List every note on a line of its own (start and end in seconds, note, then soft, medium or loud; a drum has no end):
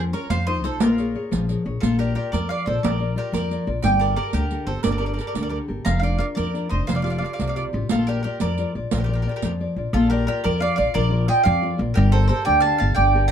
0.00 0.12 F2 loud
0.00 0.13 F3 medium
0.00 0.13 C#4 medium
0.00 0.13 F4 soft
0.00 0.13 A#4 medium
0.13 0.27 C#4 medium
0.13 0.27 F4 soft
0.13 0.29 A#4 medium
0.13 0.27 A#4 medium
0.13 0.29 C#5 medium
0.13 riq soft
0.30 0.64 F2 medium
0.30 0.63 F3 medium
0.30 0.46 C5 medium
0.30 0.46 F5 medium
0.30 riq soft
0.47 0.62 D#4 soft
0.47 0.63 F4 soft
0.47 0.63 A4 medium
0.47 0.62 C5 medium
0.47 0.62 D#5 medium
0.64 0.82 B1 medium
0.64 0.77 D#4 soft
0.64 0.77 F4 soft
0.64 0.77 A4 medium
0.64 0.80 A4 medium
0.64 0.80 C5 medium
0.64 riq soft
0.80 1.14 A#1 medium
0.80 1.13 A#3 medium
0.80 1.45 F4 medium
0.80 1.44 A#4 medium
0.80 riq medium
0.98 1.14 G#4 soft
0.98 1.14 A#4 soft
0.98 1.14 C#5 medium
0.98 riq soft
1.15 1.42 G#4 soft
1.15 1.42 A#4 soft
1.15 1.42 C#5 medium
1.31 1.54 A#1 medium
1.31 1.64 F3 medium
1.31 riq soft
1.48 1.64 G#4 soft
1.48 1.65 A#4 soft
1.48 1.65 C#5 soft
1.48 riq soft
1.65 1.76 A#1 medium
1.65 1.79 G#4 soft
1.65 1.79 A#4 soft
1.65 1.79 C#5 soft
1.80 2.15 A#1 medium
1.80 2.15 A#3 medium
1.80 1.97 F4 medium
1.80 1.97 A4 medium
1.80 riq soft
1.99 2.14 F4 soft
1.99 2.14 G4 medium
1.99 2.14 A#4 medium
1.99 2.15 A#4 soft
1.99 2.15 D5 medium
1.99 riq soft
2.15 2.42 F4 medium
2.15 2.31 G4 medium
2.15 2.43 A#4 medium
2.15 2.32 A#4 medium
2.15 2.43 D5 medium
2.32 2.55 F2 medium
2.32 2.66 F3 medium
2.32 2.48 A#4 medium
2.32 2.48 D5 medium
2.32 riq soft
2.49 2.66 F4 soft
2.49 2.67 A#4 soft
2.49 2.66 D5 medium
2.49 2.67 D5 soft
2.49 2.65 F5 medium
2.49 riq soft
2.66 2.78 A#1 medium
2.66 2.94 F4 soft
2.66 2.82 A4 medium
2.66 2.94 A#4 soft
2.66 2.83 C5 medium
2.66 2.95 D5 medium
2.83 3.17 A#1 medium
2.83 3.16 F3 medium
2.83 3.15 A#4 medium
2.83 3.14 D5 medium
2.83 riq medium
2.99 3.15 F4 soft
2.99 3.15 A#4 soft
2.99 3.16 D5 medium
3.16 3.43 F4 medium
3.16 3.33 G4 medium
3.16 3.43 A#4 soft
3.16 3.33 A#4 medium
3.16 3.44 D5 medium
3.32 3.55 F2 medium
3.32 3.65 F3 medium
3.32 3.68 A#4 medium
3.32 3.69 D5 medium
3.32 riq soft
3.51 3.66 F4 soft
3.51 3.66 A#4 soft
3.51 3.66 D5 medium
3.51 riq soft
3.67 3.78 A#1 medium
3.67 3.80 F4 medium
3.67 3.81 A#4 soft
3.67 3.81 D5 medium
3.82 4.17 G1 medium
3.82 4.16 G3 medium
3.82 3.99 D5 medium
3.82 3.99 G5 medium
3.82 riq medium
4.00 4.15 G4 medium
4.00 4.16 A4 soft
4.00 4.16 A#4 medium
4.00 4.15 D5 medium
4.00 riq soft
4.16 4.44 G4 soft
4.16 4.44 A4 medium
4.16 4.33 A#4 medium
4.16 4.44 A#4 medium
4.16 4.33 D5 medium
4.33 4.55 D2 medium
4.33 4.67 D3 medium
4.33 4.66 G4 medium
4.33 4.65 A#4 medium
4.33 riq soft
4.51 4.67 G4 soft
4.51 4.67 A4 soft
4.51 4.67 A#4 medium
4.51 riq soft
4.67 4.78 G1 medium
4.67 4.95 G4 soft
4.67 4.82 A4 medium
4.67 4.95 A4 soft
4.67 4.95 A#4 soft
4.67 4.83 C5 medium
4.83 5.18 G1 medium
4.83 5.18 D3 medium
4.83 4.90 A#4 medium
4.83 4.91 D5 medium
4.83 riq medium
4.91 4.97 A#4 soft
4.91 4.98 D5 medium
4.98 5.15 G4 soft
4.98 5.16 A4 soft
4.98 5.05 A#4 medium
4.98 5.16 A#4 medium
4.98 5.05 D5 medium
5.06 5.13 A#4 soft
5.06 5.12 D5 medium
5.14 5.45 G4 soft
5.14 5.45 A4 medium
5.14 5.20 A#4 soft
5.14 5.45 A#4 medium
5.14 5.19 D5 soft
5.19 5.27 A#4 soft
5.19 5.26 D5 soft
5.19 riq soft
5.27 5.34 A#4 soft
5.27 5.35 D5 medium
5.35 5.58 D2 medium
5.35 5.68 D3 medium
5.35 5.41 A#4 soft
5.35 5.42 D5 soft
5.35 riq soft
5.43 5.49 A#4 medium
5.43 5.48 D5 medium
5.49 5.67 G4 soft
5.49 5.67 A4 soft
5.49 5.58 A#4 medium
5.49 5.67 A#4 soft
5.49 5.58 D5 medium
5.68 5.81 G1 medium
5.68 5.82 G4 soft
5.68 5.82 A4 soft
5.68 5.83 A#4 soft
5.85 6.20 F1 medium
5.85 6.19 F3 medium
5.85 6.02 F5 medium
5.85 5.99 A#5 loud
5.85 riq medium
6.00 6.17 D4 soft
6.00 6.18 F4 soft
6.00 6.18 A#4 soft
6.00 6.19 D5 medium
6.00 6.17 F5 medium
6.04 riq soft
6.18 6.47 D4 soft
6.18 6.47 F4 soft
6.18 6.47 A#4 medium
6.18 6.25 D5 medium
6.18 6.23 F5 medium
6.35 6.60 F2 medium
6.35 6.70 F3 medium
6.35 6.69 A#4 medium
6.35 6.68 D5 medium
6.35 riq soft
6.54 6.69 D4 soft
6.54 6.70 F4 soft
6.54 6.70 A#4 soft
6.54 riq soft
6.69 6.83 F1 medium
6.69 6.85 D4 soft
6.69 6.85 F4 soft
6.69 6.85 A#4 soft
6.69 6.86 C5 medium
6.69 6.86 D#5 medium
6.87 7.22 F1 medium
6.87 7.21 F3 medium
6.87 6.95 C5 medium
6.87 6.95 F5 medium
6.87 riq soft
6.95 7.01 D5 medium
6.95 7.03 F5 medium
7.02 7.19 F4 soft
7.02 7.20 G4 soft
7.02 7.21 A4 medium
7.02 7.09 D5 medium
7.02 7.10 F5 medium
7.02 riq soft
7.10 7.17 D5 medium
7.10 7.17 F5 medium
7.18 7.48 F4 medium
7.18 7.49 G4 soft
7.18 7.49 A4 medium
7.18 7.24 D5 soft
7.18 7.23 F5 medium
7.24 7.32 D5 soft
7.24 7.32 F5 medium
7.33 7.40 D5 medium
7.33 7.40 F5 medium
7.39 7.61 C2 medium
7.39 7.72 C3 medium
7.39 7.46 D5 soft
7.39 7.48 F5 soft
7.39 riq soft
7.47 7.55 D5 medium
7.47 7.55 F5 medium
7.56 7.72 F4 soft
7.56 7.72 G4 soft
7.56 7.73 A4 soft
7.56 7.63 D5 medium
7.56 7.63 F5 medium
7.56 riq soft
7.73 7.85 A1 medium
7.73 7.86 F4 soft
7.73 7.87 G4 soft
7.73 7.87 A4 soft
7.89 8.24 A#1 medium
7.89 8.23 A#3 medium
7.89 8.06 F4 medium
7.89 8.06 A4 medium
7.89 riq medium
8.07 8.24 F4 medium
8.07 8.23 G4 medium
8.07 8.21 A#4 medium
8.07 8.24 A#4 soft
8.07 8.24 D5 medium
8.07 riq soft
8.23 8.52 F4 medium
8.23 8.40 G4 medium
8.23 8.39 A#4 medium
8.23 8.52 A#4 medium
8.23 8.52 D5 medium
8.40 8.63 F2 medium
8.40 8.74 F3 medium
8.40 8.73 A#4 medium
8.40 8.72 D5 medium
8.40 riq soft
8.58 8.74 F4 medium
8.58 8.74 A#4 soft
8.58 8.75 D5 soft
8.58 riq soft
8.75 8.86 A#1 medium
8.75 9.02 F4 soft
8.75 9.02 A#4 soft
8.75 9.03 D5 soft
8.91 9.25 A#1 medium
8.91 9.25 F3 medium
8.91 8.97 F4 medium
8.91 8.99 A#4 medium
8.91 riq medium
8.98 9.03 G4 soft
8.98 9.05 A#4 soft
9.04 9.12 G4 medium
9.04 9.13 A#4 soft
9.09 9.25 F4 soft
9.09 9.25 A#4 soft
9.09 9.26 D5 medium
9.13 9.21 G4 soft
9.13 9.21 A#4 soft
9.22 9.28 G4 soft
9.22 9.29 A#4 medium
9.26 9.53 F4 medium
9.26 9.35 G4 soft
9.26 9.53 A#4 soft
9.26 9.54 D5 medium
9.31 9.36 A#4 soft
9.36 9.43 G4 medium
9.36 9.43 A#4 medium
9.42 9.65 F2 medium
9.42 9.76 F3 medium
9.42 9.51 G4 soft
9.42 9.51 A#4 soft
9.42 riq soft
9.60 9.76 F4 soft
9.60 9.76 A#4 soft
9.60 9.77 D5 medium
9.76 9.88 A#1 medium
9.76 9.90 F4 soft
9.76 9.91 A#4 soft
9.76 9.91 D5 soft
9.93 10.26 A#1 medium
9.93 10.28 A#3 medium
9.93 10.10 F4 medium
9.93 10.09 A4 medium
10.10 10.26 F4 medium
10.10 10.27 G4 medium
10.10 10.26 A#4 medium
10.10 10.26 A#4 soft
10.10 10.26 D5 medium
10.27 10.54 F4 medium
10.27 10.44 G4 medium
10.27 10.43 A#4 medium
10.27 10.55 A#4 medium
10.27 10.55 D5 medium
10.44 10.67 F2 medium
10.44 10.78 F3 medium
10.44 10.60 A#4 medium
10.44 10.60 D5 medium
10.60 10.76 F4 medium
10.60 10.77 A#4 soft
10.60 10.77 D5 medium
10.60 10.76 D5 medium
10.60 10.75 F5 medium
10.76 10.90 A#1 medium
10.76 11.05 F4 soft
10.76 11.05 A#4 soft
10.76 10.94 D5 medium
10.76 11.05 D5 medium
10.76 10.93 F5 medium
10.94 11.28 A#1 loud
10.94 11.28 F3 medium
10.94 11.26 A#4 medium
10.94 11.26 D5 medium
11.10 11.27 F4 medium
11.10 11.28 A#4 medium
11.10 11.28 D5 medium
11.28 11.56 F4 medium
11.28 11.56 A#4 medium
11.28 11.56 D5 medium
11.28 11.44 D#5 medium
11.28 11.43 G5 medium
11.43 11.68 F2 loud
11.43 11.78 F3 medium
11.43 11.81 D5 medium
11.43 11.80 F5 medium
11.62 11.77 F4 medium
11.62 11.77 A#4 soft
11.62 11.78 D5 medium
11.78 11.90 A#1 medium
11.78 11.92 F4 medium
11.78 11.92 A#4 soft
11.78 11.93 D5 medium
11.94 12.30 G1 loud
11.94 12.29 G3 medium
11.94 12.11 G4 medium
11.94 12.12 A#4 medium
12.12 12.29 G4 medium
12.12 12.28 A4 medium
12.12 12.29 A4 medium
12.12 12.29 A#4 medium
12.12 12.27 C5 medium
12.28 12.57 G4 medium
12.28 12.45 A4 medium
12.28 12.57 A4 medium
12.28 12.57 A#4 medium
12.28 12.44 C5 medium
12.45 12.69 D2 medium
12.45 12.79 D3 medium
12.45 12.61 D5 medium
12.45 12.61 G5 loud
12.60 12.79 G4 medium
12.60 12.79 A4 soft
12.60 12.80 A#4 medium
12.60 12.77 F5 medium
12.60 12.79 A5 medium
12.78 12.92 G1 medium
12.78 13.07 G4 medium
12.78 13.07 A4 soft
12.78 13.07 A#4 medium
12.78 12.95 F5 medium
12.78 12.94 A5 medium
12.95 13.30 G1 medium
12.95 13.29 D3 medium
12.95 13.27 D5 medium
12.95 13.27 G5 medium
13.14 13.29 G4 medium
13.14 13.30 A4 soft
13.14 13.30 A#4 medium
13.28 13.31 A#5 loud